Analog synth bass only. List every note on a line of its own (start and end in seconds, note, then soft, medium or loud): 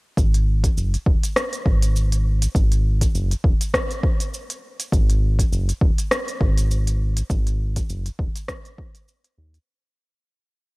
0.17 0.69 G#1 medium
0.77 0.97 F#1 medium
1.06 1.17 D#1 loud
1.66 2.47 G#1 medium
2.55 3.07 G#1 medium
3.14 3.34 F#1 medium
3.44 3.55 D#1 loud
4.92 5.44 G#1 medium
5.51 5.72 F#1 medium
5.81 5.92 D#1 loud
6.41 7.22 G#1 medium
7.30 7.82 G#1 loud
7.89 8.10 F#1 medium
8.19 8.30 D#1 loud
9.38 9.58 D#2 loud